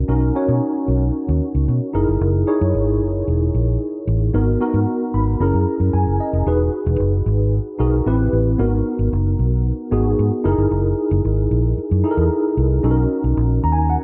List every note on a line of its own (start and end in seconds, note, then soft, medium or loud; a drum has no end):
0.00 0.08 C#4 medium
0.00 0.09 D#4 medium
0.00 0.09 F#4 medium
0.00 0.09 A#4 medium
0.08 0.30 B1 medium
0.08 0.31 C#4 medium
0.08 0.31 D#4 medium
0.08 0.31 F#4 medium
0.08 0.31 A#4 medium
0.35 1.25 C#4 medium
0.35 1.25 D#4 medium
0.35 1.26 F#4 medium
0.35 1.26 C#5 medium
0.48 0.59 B2 medium
0.88 1.09 B1 medium
1.29 1.39 D#2 medium
1.55 1.65 C#2 medium
1.68 1.79 B2 medium
1.93 2.05 F#1 medium
1.93 2.39 D#4 medium
1.93 2.39 E4 medium
1.93 2.40 G#4 medium
1.93 2.40 A#4 medium
2.09 2.19 G1 medium
2.21 2.42 F#1 loud
2.47 3.38 D#4 medium
2.47 3.38 E4 medium
2.47 3.38 G#4 medium
2.47 3.38 C#5 medium
2.61 2.72 F#2 medium
2.75 3.01 G#1 medium
3.01 3.22 F#1 medium
3.28 3.49 E1 medium
3.54 3.76 A#1 medium
4.07 4.29 A1 medium
4.34 4.55 G#1 medium
4.34 4.56 B3 medium
4.34 4.57 D#4 medium
4.34 4.57 F#4 medium
4.34 4.57 A#4 medium
4.60 5.40 B3 medium
4.60 5.41 D#4 medium
4.60 5.41 F#4 medium
4.60 5.40 A#4 medium
4.74 4.85 G#2 medium
5.14 5.35 G#1 medium
5.14 5.39 B5 medium
5.40 5.51 F#1 medium
5.40 6.31 C#4 medium
5.40 6.31 E4 medium
5.40 6.31 G#4 medium
5.40 6.31 A#4 medium
5.40 5.90 A#5 medium
5.54 5.64 F#2 medium
5.80 5.91 F#2 medium
5.93 6.04 F#2 medium
5.93 6.18 G#5 medium
6.07 6.18 F#1 medium
6.20 6.45 D#5 medium
6.33 6.44 F1 medium
6.46 6.68 E1 medium
6.46 7.37 D#4 medium
6.46 7.37 F#4 medium
6.46 7.37 G#4 medium
6.46 7.37 B4 medium
6.86 6.97 E1 medium
7.00 7.21 F#1 medium
7.26 7.58 G#1 medium
7.79 8.01 B1 medium
7.79 8.06 D#4 medium
7.79 8.06 F#4 medium
7.79 8.06 G#4 medium
7.79 8.06 A#4 medium
8.06 8.27 A1 medium
8.06 8.51 C4 medium
8.06 8.51 E4 medium
8.06 8.52 G4 medium
8.06 8.52 B4 medium
8.33 8.54 A1 medium
8.58 8.80 G#1 loud
8.58 9.49 B3 medium
8.58 9.49 D#4 medium
8.58 9.49 F#4 medium
8.58 9.49 A#4 medium
8.99 9.10 G#1 medium
9.13 9.34 F#1 medium
9.39 9.71 B1 medium
9.91 10.13 G#1 medium
9.91 10.45 B3 medium
9.91 10.43 D#4 medium
9.91 10.45 F#4 medium
9.91 10.44 G#4 loud
10.19 10.29 G#2 loud
10.44 10.56 F#1 medium
10.44 11.34 D#4 medium
10.44 11.35 E4 medium
10.44 11.35 G#4 medium
10.44 11.35 A#4 medium
10.58 10.69 G1 medium
10.71 10.92 F#1 medium
11.11 11.22 F#1 loud
11.25 11.46 G#1 medium
11.51 11.72 A#1 medium
11.78 muted fingered electric bass stroke soft
11.91 12.02 F#2 medium
12.04 12.71 D#4 medium
12.04 12.71 E4 medium
12.04 12.72 G#4 medium
12.04 12.11 A4 medium
12.11 12.75 A#4 medium
12.17 12.28 E2 medium
12.57 12.78 C2 medium
12.83 13.05 B1 loud
12.83 13.73 C#4 medium
12.83 13.74 D#4 medium
12.83 13.74 F#4 medium
12.83 12.90 A4 medium
12.91 13.77 A#4 medium
13.24 13.34 B1 medium
13.37 13.58 A#1 medium
13.64 13.95 D#2 medium
13.64 13.72 A#5 medium
13.72 13.89 G#5 medium
13.90 14.04 F#5 medium